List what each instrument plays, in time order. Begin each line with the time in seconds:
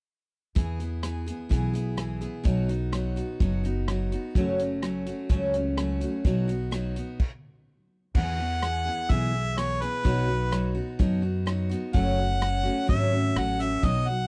0.55 upright bass E2, steel-string acoustic guitar E3 B3 E4 G#4, kick, closed hi-hat
0.80 steel-string acoustic guitar B3 E4 G#4, closed hi-hat
1.03 steel-string acoustic guitar E3 B3 E4 G#4, cross-stick, closed hi-hat
1.26 steel-string acoustic guitar B3 E4 G#4, closed hi-hat
1.49 upright bass B1, steel-string acoustic guitar E3 B3 E4 G#4, kick, closed hi-hat
1.73 steel-string acoustic guitar B3 E4 G#4, closed hi-hat
1.97 steel-string acoustic guitar E3 B3 E4 G#4, cross-stick, closed hi-hat
2.21 steel-string acoustic guitar B3 E4 G#4, closed hi-hat
2.43 upright bass B1, steel-string acoustic guitar B2 F#3 B3 D#4 F#4, kick, closed hi-hat
2.68 steel-string acoustic guitar B3 D#4 F#4, closed hi-hat
2.92 steel-string acoustic guitar F#3 B3 D#4 F#4, cross-stick, closed hi-hat
3.16 steel-string acoustic guitar B3 D#4 F#4, closed hi-hat
3.40 upright bass F#1, steel-string acoustic guitar B2 F#3 B3 D#4 F#4, kick, closed hi-hat
3.64 steel-string acoustic guitar B3 D#4 F#4, closed hi-hat
3.88 steel-string acoustic guitar F#3 B3 D#4 F#4, cross-stick, closed hi-hat
4.12 steel-string acoustic guitar B3 D#4 F#4, closed hi-hat
4.35 upright bass F#1, steel-string acoustic guitar F#2 C#3 F#3 A3 C#4 F#4, kick, closed hi-hat
4.58 steel-string acoustic guitar A3 C#4 F#4, closed hi-hat
4.82 steel-string acoustic guitar F#3 A3 C#4 F#4, cross-stick, closed hi-hat
5.06 steel-string acoustic guitar F#3 A3 C#4 F#4, closed hi-hat
5.29 upright bass C#2, steel-string acoustic guitar F#2 C#3 F#3 A3 C#4 F#4, kick, closed hi-hat
5.53 steel-string acoustic guitar F#3 A3 C#4 F#4, closed hi-hat
5.77 steel-string acoustic guitar F#3 A3 C#4 F#4, cross-stick, closed hi-hat
6.01 steel-string acoustic guitar F#3 A3 C#4 F#4, closed hi-hat
6.24 upright bass B1, steel-string acoustic guitar B2 F#3 B3 D#4 F#4, kick, closed hi-hat
6.48 steel-string acoustic guitar B3 D#4 F#4, closed hi-hat
6.71 steel-string acoustic guitar F#3 B3 D#4 F#4, cross-stick, closed hi-hat
6.96 steel-string acoustic guitar B3 D#4 F#4, closed hi-hat
7.20 kick, crash
8.15 upright bass E2, steel-string acoustic guitar E3 B3 E4 G#4, harmonica F#5, kick, crash
8.39 steel-string acoustic guitar B3 E4 G#4
8.62 steel-string acoustic guitar E3 B3 E4 G#4, cross-stick, closed hi-hat
8.85 steel-string acoustic guitar B3 E4 G#4
9.09 upright bass B1, steel-string acoustic guitar E3 B3 E4 G#4, harmonica E5, kick, closed hi-hat
9.33 steel-string acoustic guitar B3 E4 G#4
9.58 steel-string acoustic guitar E3 B3 E4 G#4, harmonica C#5, cross-stick, closed hi-hat
9.81 steel-string acoustic guitar B3 E4 G#4, harmonica B4, closed hi-hat
10.04 upright bass B1, steel-string acoustic guitar B2 F#3 B3 D#4 F#4, kick, closed hi-hat
10.28 steel-string acoustic guitar B3 D#4 F#4
10.51 steel-string acoustic guitar F#3 B3 D#4 F#4, cross-stick, closed hi-hat
10.75 steel-string acoustic guitar B3 D#4 F#4
10.99 upright bass F#2, steel-string acoustic guitar B2 F#3 B3 D#4 F#4, kick, closed hi-hat
11.22 steel-string acoustic guitar B3 D#4 F#4
11.46 steel-string acoustic guitar F#3 B3 D#4 F#4, cross-stick, closed hi-hat
11.70 steel-string acoustic guitar B3 D#4 F#4, closed hi-hat
11.93 upright bass F#1, steel-string acoustic guitar F#2 C#3 F#3 A3 C#4 F#4, harmonica F#5, kick, closed hi-hat
12.17 steel-string acoustic guitar F#3 A3 C#4 F#4
12.40 steel-string acoustic guitar F#3 A3 C#4 F#4, cross-stick, closed hi-hat
12.63 steel-string acoustic guitar F#3 A3 C#4 F#4
12.87 upright bass G#1, steel-string acoustic guitar F#2 C#3 F#3 A3 C#4 F#4, harmonica E5, kick, closed hi-hat
13.11 steel-string acoustic guitar F#3 A3 C#4 F#4
13.35 upright bass A1, steel-string acoustic guitar F#3 A3 C#4 F#4, harmonica F#5, cross-stick, closed hi-hat
13.59 steel-string acoustic guitar F#3 A3 C#4 F#4, harmonica E5, closed hi-hat
13.83 upright bass B1, steel-string acoustic guitar B2 F#3 B3 D#4 F#4, harmonica D#5, kick, closed hi-hat
14.07 steel-string acoustic guitar B3 F#4, harmonica F#5